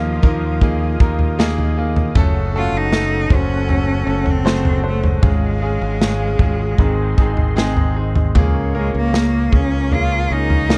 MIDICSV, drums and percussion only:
0, 0, Header, 1, 2, 480
1, 0, Start_track
1, 0, Key_signature, -5, "major"
1, 0, Tempo, 768246
1, 1348, Time_signature, 4, 2, 24, 8
1, 3265, Tempo, 780234
1, 6681, End_track
2, 0, Start_track
2, 0, Title_t, "Drums"
2, 141, Note_on_c, 9, 43, 60
2, 145, Note_on_c, 9, 36, 86
2, 204, Note_off_c, 9, 43, 0
2, 208, Note_off_c, 9, 36, 0
2, 384, Note_on_c, 9, 36, 74
2, 384, Note_on_c, 9, 43, 57
2, 446, Note_off_c, 9, 43, 0
2, 447, Note_off_c, 9, 36, 0
2, 626, Note_on_c, 9, 36, 96
2, 689, Note_off_c, 9, 36, 0
2, 743, Note_on_c, 9, 43, 51
2, 805, Note_off_c, 9, 43, 0
2, 874, Note_on_c, 9, 38, 107
2, 936, Note_off_c, 9, 38, 0
2, 989, Note_on_c, 9, 43, 58
2, 1051, Note_off_c, 9, 43, 0
2, 1227, Note_on_c, 9, 43, 69
2, 1290, Note_off_c, 9, 43, 0
2, 1346, Note_on_c, 9, 43, 106
2, 1347, Note_on_c, 9, 36, 107
2, 1408, Note_off_c, 9, 43, 0
2, 1409, Note_off_c, 9, 36, 0
2, 1828, Note_on_c, 9, 38, 99
2, 1890, Note_off_c, 9, 38, 0
2, 2063, Note_on_c, 9, 43, 65
2, 2064, Note_on_c, 9, 36, 82
2, 2126, Note_off_c, 9, 43, 0
2, 2127, Note_off_c, 9, 36, 0
2, 2304, Note_on_c, 9, 43, 60
2, 2367, Note_off_c, 9, 43, 0
2, 2661, Note_on_c, 9, 43, 54
2, 2723, Note_off_c, 9, 43, 0
2, 2792, Note_on_c, 9, 38, 107
2, 2855, Note_off_c, 9, 38, 0
2, 2906, Note_on_c, 9, 43, 57
2, 2969, Note_off_c, 9, 43, 0
2, 3146, Note_on_c, 9, 43, 70
2, 3208, Note_off_c, 9, 43, 0
2, 3267, Note_on_c, 9, 36, 116
2, 3267, Note_on_c, 9, 43, 116
2, 3328, Note_off_c, 9, 43, 0
2, 3329, Note_off_c, 9, 36, 0
2, 3751, Note_on_c, 9, 38, 109
2, 3813, Note_off_c, 9, 38, 0
2, 3983, Note_on_c, 9, 36, 79
2, 3983, Note_on_c, 9, 43, 61
2, 4044, Note_off_c, 9, 36, 0
2, 4044, Note_off_c, 9, 43, 0
2, 4224, Note_on_c, 9, 36, 70
2, 4225, Note_on_c, 9, 43, 54
2, 4285, Note_off_c, 9, 36, 0
2, 4286, Note_off_c, 9, 43, 0
2, 4467, Note_on_c, 9, 36, 85
2, 4528, Note_off_c, 9, 36, 0
2, 4584, Note_on_c, 9, 43, 56
2, 4645, Note_off_c, 9, 43, 0
2, 4715, Note_on_c, 9, 38, 104
2, 4776, Note_off_c, 9, 38, 0
2, 4828, Note_on_c, 9, 43, 59
2, 4890, Note_off_c, 9, 43, 0
2, 5067, Note_on_c, 9, 43, 72
2, 5129, Note_off_c, 9, 43, 0
2, 5188, Note_on_c, 9, 43, 107
2, 5190, Note_on_c, 9, 36, 103
2, 5249, Note_off_c, 9, 43, 0
2, 5252, Note_off_c, 9, 36, 0
2, 5674, Note_on_c, 9, 38, 99
2, 5735, Note_off_c, 9, 38, 0
2, 5908, Note_on_c, 9, 43, 60
2, 5911, Note_on_c, 9, 36, 78
2, 5969, Note_off_c, 9, 43, 0
2, 5972, Note_off_c, 9, 36, 0
2, 6151, Note_on_c, 9, 43, 56
2, 6212, Note_off_c, 9, 43, 0
2, 6511, Note_on_c, 9, 43, 57
2, 6572, Note_off_c, 9, 43, 0
2, 6635, Note_on_c, 9, 38, 108
2, 6681, Note_off_c, 9, 38, 0
2, 6681, End_track
0, 0, End_of_file